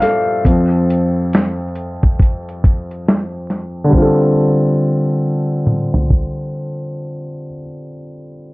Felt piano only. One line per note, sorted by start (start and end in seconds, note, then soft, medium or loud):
0.00 0.41 G2 medium
0.00 0.41 F3 medium
0.00 0.42 A#3 medium
0.00 0.47 F4 medium
0.00 0.47 G4 medium
0.00 3.03 A4 medium
0.00 0.47 D5 medium
0.00 0.47 E5 medium
0.00 3.01 F5 medium
0.45 3.89 F2 medium
0.45 3.89 F3 medium
0.45 3.89 C4 medium
3.84 7.44 D3 medium
3.89 7.48 G3 medium
3.93 7.53 C4 medium
3.98 7.57 F4 medium
4.02 7.62 A4 medium